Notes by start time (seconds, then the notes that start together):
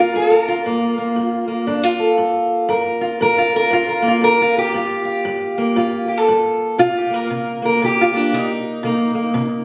Already playing: A#3 A#4
0.00 F4
0.14 G2 A4
0.31 F4
0.39 A#4
0.48 F4
0.66 G2 A#3
0.98 A#3
1.16 G2
1.48 A#3
1.67 G2 D4
1.83 F4
1.99 A4
2.18 G2
2.69 G2 A#4
3.01 F4
3.21 G2 A#4
3.38 F4
3.56 A#4
3.70 G2 F4
3.89 A#4
4.02 A#3
4.08 F4
4.21 G2 A#4
4.41 F4
4.58 G4
4.74 G2 F4
5.05 F4
5.25 G2
5.58 A#3
5.76 G2 F4
6.08 G4
6.18 A4
6.28 G2
6.78 C3 F4
6.97 G4
7.10 A#3 A#4
7.30 C3
7.62 A#3 A#4
7.82 C3 G4
8.01 F4
8.13 A#3 D4
8.32 C3 D#4
8.83 C3 A#3
9.15 A#3
9.34 C3